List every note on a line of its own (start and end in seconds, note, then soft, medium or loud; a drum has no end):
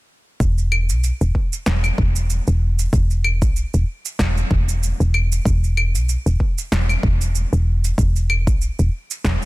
0.40 0.91 E1 medium
0.40 kick loud
0.40 shaker soft
0.58 shaker soft
0.72 claves medium
0.90 1.12 B1 medium
0.90 shaker medium
1.04 shaker soft
1.21 1.31 E1 medium
1.21 shaker soft
1.35 kick medium
1.53 shaker medium
1.66 1.91 E1 medium
1.66 snare medium
1.66 shaker soft
1.84 claves medium
1.84 shaker soft
1.98 2.40 E1 medium
1.98 kick loud
2.16 shaker medium
2.30 shaker medium
2.47 2.87 E1 medium
2.47 shaker soft
2.79 shaker medium
2.93 3.43 E1 loud
2.93 kick loud
2.93 shaker medium
3.11 shaker soft
3.24 claves medium
3.42 3.64 B1 medium
3.42 kick loud
3.42 shaker medium
3.56 shaker medium
3.74 3.84 E1 medium
3.74 shaker soft
4.05 shaker medium
4.19 4.43 E1 medium
4.19 kick medium
4.19 snare medium
4.19 shaker medium
4.37 shaker soft
4.51 4.92 E1 medium
4.51 kick loud
4.69 shaker medium
4.83 shaker medium
5.00 5.40 E1 loud
5.00 shaker soft
5.14 claves medium
5.32 shaker medium
5.45 5.96 E1 loud
5.45 kick loud
5.45 shaker medium
5.64 shaker soft
5.77 claves medium
5.95 6.17 B1 medium
5.95 shaker medium
6.09 shaker medium
6.26 6.37 E1 medium
6.26 shaker soft
6.40 kick medium
6.58 shaker medium
6.72 6.96 E1 medium
6.72 snare medium
6.72 shaker medium
6.89 claves medium
6.89 shaker soft
7.03 7.45 E1 medium
7.03 kick loud
7.21 shaker medium
7.35 shaker medium
7.53 7.92 E1 loud
7.53 shaker soft
7.84 shaker medium
7.98 8.49 E1 loud
7.98 kick loud
7.98 shaker medium
8.16 shaker soft
8.30 claves medium
8.47 8.69 B1 medium
8.47 kick loud
8.47 shaker medium
8.61 shaker medium
8.79 8.89 E1 medium
8.79 shaker soft
9.11 shaker medium
9.24 9.37 E1 loud
9.24 kick medium
9.24 snare medium
9.24 shaker medium